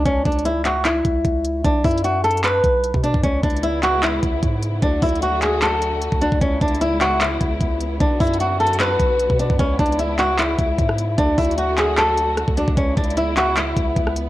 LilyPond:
<<
  \new Staff \with { instrumentName = "Nylon-string guitar" } { \time 4/4 \key cis \phrygian \tempo 4 = 151 cis'8 d'8 e'8 fis'8 e'2 | d'8 e'8 fis'8 a'8 b'4. d'8 | cis'8 d'8 e'8 fis'8 e'2 | d'8 e'8 fis'8 gis'8 a'4. d'8 |
cis'8 d'8 e'8 fis'8 e'2 | d'8 e'8 fis'8 a'8 b'4. d'8 | cis'8 d'8 e'8 fis'8 e'2 | d'8 e'8 fis'8 gis'8 a'4. d'8 |
cis'8 d'8 e'8 fis'8 e'2 | }
  \new Staff \with { instrumentName = "String section" } { \clef bass \time 4/4 \key cis \phrygian << { r1 | r1 | <cis gis e'>1 | <d fis fis'>1 |
<cis gis e'>1 | <d fis fis'>1 | <cis gis e'>1 | <d fis fis'>1 |
<cis gis e'>1 | } \\ { r1 | r1 | b1 | a1 |
b1~ | b1~ | b1 | a1 |
b1 | } >> }
  \new Staff \with { instrumentName = "808-style bass" } { \clef bass \time 4/4 \key cis \phrygian cis,8 cis,2 cis,8 cis,4 | b,,8 fis,2 b,,8. b,8 fis,16 | cis,8 cis,2 cis,8 gis,4 | d,8 d,2~ d,8. d,8 d,16 |
cis,8 cis,2 cis,8 cis,4 | b,,8 fis,2 b,,8. b,8 fis,16 | cis,8 cis,2 cis,8 gis,4 | d,8 d,2~ d,8. d,8 d,16 |
cis,8 cis,2 cis,8 cis,4 | }
  \new DrumStaff \with { instrumentName = "Drums" } \drummode { \time 4/4 \tuplet 3/2 { <hh bd>16 r16 r16 <hh bd>16 hh16 hh16 } hh8 <hc hh>8 <hc hh>8 <hh bd>8 <hh bd>8 hh8 | \tuplet 3/2 { <hh bd>16 r16 r16 <hh hho bd>16 hh16 hh16 hh16 r16 r16 hh16 hh16 hh16 } <hc hh>8 <hh bd>8 hh16 bd16 hh16 bd16 | \tuplet 3/2 { <hh bd>16 r16 r16 <hh bd>16 hh16 hh16 } hh8 <hc hh>8 <hc hh>8 <hh bd>8 <hh bd>8 hh8 | \tuplet 3/2 { <hh bd>16 r16 r16 <hh hho bd>16 hh16 hh16 } hh8 <hc hh>8 <hc hh>8 hh8 hh16 bd16 hh16 bd16 |
\tuplet 3/2 { <hh bd>16 r16 r16 <hh bd>16 hh16 hh16 } hh8 <hc hh>8 <hc hh>8 <hh bd>8 <hh bd>8 hh8 | \tuplet 3/2 { <hh bd>16 r16 r16 <hh hho bd>16 hh16 hh16 hh16 r16 r16 hh16 hh16 hh16 } <hc hh>8 <hh bd>8 hh16 bd16 hh16 bd16 | \tuplet 3/2 { <hh bd>16 r16 r16 <hh bd>16 hh16 hh16 } hh8 <hc hh>8 <hc hh>8 <hh bd>8 <hh bd>16 ss16 hh8 | \tuplet 3/2 { <hh bd>16 r16 r16 <hh hho bd>16 hh16 hh16 } hh8 <hc hh>8 <hc hh>8 hh8 <hh ss>16 bd16 hh16 bd16 |
\tuplet 3/2 { <hh bd>16 r16 r16 <hh bd>16 hh16 hh16 } hh8 <hc hh>8 <hc hh>8 <hh bd>8 <hh bd>16 ss16 hh8 | }
>>